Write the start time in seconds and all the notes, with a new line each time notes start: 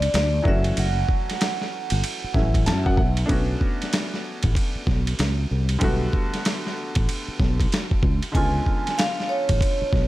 Already playing: D3 G#3 B3 C#4 F4 D5
0.02 ride
0.14 D2 D5, snare, hi-hat pedal, ride
0.42 F#1 E3 F#3 A3 C#4, kick
0.47 F#4 E5
0.64 ride
0.77 F#1 F#5, ride
1.09 kick
1.30 snare, ride
1.41 snare, hi-hat pedal, ride
1.61 snare
1.90 G1, ride
2.04 ride
2.24 muted fretless electric bass stroke
2.34 A1 E3 F#3 A3 C#4 E4, kick, snare
2.54 kick, ride
2.66 F#2 A5, snare, hi-hat pedal, ride
2.86 F#5, kick
2.97 B1 F#5, kick
3.17 ride
3.26 A3 B3 C#4 D4, kick, ride
3.30 B1 F#4
3.61 kick
3.82 snare, ride
3.93 snare, hi-hat pedal, ride
4.14 snare
4.43 A1, kick, ride
4.55 kick, ride
4.75 muted fretless electric bass stroke
4.87 B1, kick, snare
5.07 ride
5.19 C#2, snare, hi-hat pedal, ride
5.51 C2
5.69 ride
5.79 B1 D3 G3 A3 B3, kick, ride
5.84 F#4
6.13 kick
6.34 snare, ride
6.45 snare, hi-hat pedal, ride
6.67 snare
6.95 A1, kick, ride
7.09 ride
7.28 muted fretless electric bass stroke
7.40 B1, kick, snare
7.60 kick, ride
7.72 snare, hi-hat pedal, ride
7.91 kick
8.03 C#2, kick
8.22 ride
8.32 C#2 D3 G#3 B3 C#4 G#5, kick, ride
8.37 F4
8.66 kick
8.87 snare, ride
8.98 F5, snare, hi-hat pedal, ride
9.20 snare
9.29 C#5
9.49 A1, kick, ride
9.61 kick, ride
9.81 muted fretless electric bass stroke
9.93 B1, kick, snare